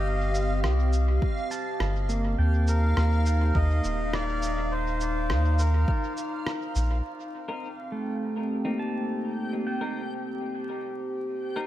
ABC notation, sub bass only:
X:1
M:4/4
L:1/8
Q:1/4=103
K:Cdor
V:1 name="Sub bass" clef=bass
G,,,2 C,,2 z2 G,,,2 | E,,2 E,,2 E,, E,,,3- | E,,,2 E,,2 z3 B,,, | z8 |
z8 |]